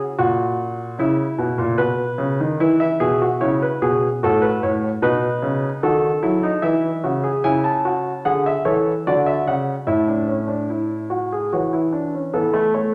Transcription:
Already playing: C#3
0.19 A#2 F#4
0.99 C#3 E4
1.38 B2
1.58 A#2
1.78 B2 B4
2.18 C#3
2.40 D#3
2.60 E3 E4
2.80 E5
3.00 B2 G#4
3.22 F#4
3.41 C#3 E4 C#5
3.62 B4
3.82 B2 G#4
4.23 A2 F#4 A4
4.42 B4
4.63 A2 C#5
5.02 B2 D#4 B4
5.42 C#3
5.83 D#3 F#4 A4
6.23 F#3 E4
6.43 D#4
6.62 E3 E4 E5
7.04 C#3 F#4
7.24 G#4
7.44 C#3 E4 G#5
7.64 A5
7.85 F#4
8.25 D3 G#4 F#5
8.46 E5
8.65 E3 A4 C#5
9.07 D3 F#4 D5
9.26 E5
9.47 C#3 F#5
9.87 A2 E4 E5
10.08 D4
10.28 C#4
10.48 D4
10.70 E4
11.10 F#4
11.32 G#4
11.53 E3 F#4 C#5
11.73 E4
11.92 D4
12.14 C#4
12.34 E3 B3 A4
12.53 A3
12.74 A3 C#5

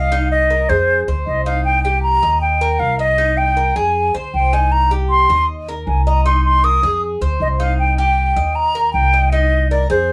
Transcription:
Already playing: C2 D#5 F5
0.12 D#4
0.32 D#5
0.50 A#4
0.69 F2 G#4 C5
1.08 D2 C5
1.27 C2 D#5
1.46 D#4 F5
1.65 G5
1.83 G4 G5
2.03 A#5
2.23 D#2 D#5
2.41 G5
2.61 A#4
2.79 C2 F5
2.99 D#5
3.18 D#4
3.37 G5
3.57 A#4
3.76 F2 G#4 G#5
4.15 D2 C5
4.34 C2 G5
4.53 D#4 G#5
4.72 A#5
4.91 G4
5.10 C6
5.29 D#2 D#5
5.68 A#4
5.87 C2 G#5
6.06 D#5 A#5
6.25 D#4 C6
6.45 C6
6.64 A#4 D#6
6.83 F2 G#4
7.21 D2 C5
7.40 C2 D#5
7.60 D#4 F5
7.79 G5
7.98 G4 G5
8.36 D#2 D#5
8.55 A#5
8.75 A#4
8.93 C2 G5
9.14 D#5
9.32 D#4 D#5
9.71 A#4 D5
9.90 F2 G#4 C5

